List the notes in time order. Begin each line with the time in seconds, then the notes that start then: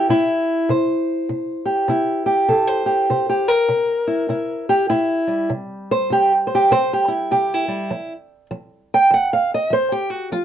Already playing: E4 C5
0.09 C3 E4
0.69 C3 C5
1.29 C3
1.66 G4
1.88 C3 E4
2.26 G4
2.48 C3 A4
2.67 C5
2.86 G4
3.10 C3 C5
3.29 G4
3.48 A#4
3.68 C3
4.07 E4
4.29 C3 E4
4.69 G4
4.90 C3 E4
5.27 G3
5.50 C3
5.91 C5
6.10 C3 G4
6.47 C5
6.55 G4
6.71 C3 C5
6.93 G4
7.08 E4
7.31 C3 G4
7.54 E4
7.68 G3
7.91 F3
8.51 F3
8.94 G5
9.11 F3 F#5
9.33 F5
9.54 D#5
9.70 F3 C5
9.92 G4
10.10 F#4
10.32 F3 F4